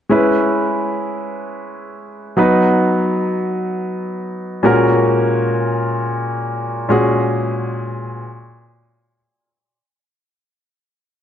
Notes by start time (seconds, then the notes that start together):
0.09 G#3 C#4 E4 B4
2.37 F#3 B3 D#4 B4
4.63 A#2 G#3 C#4 F#4 A#4
6.89 A#2 G#3 C#4 F#4 G#4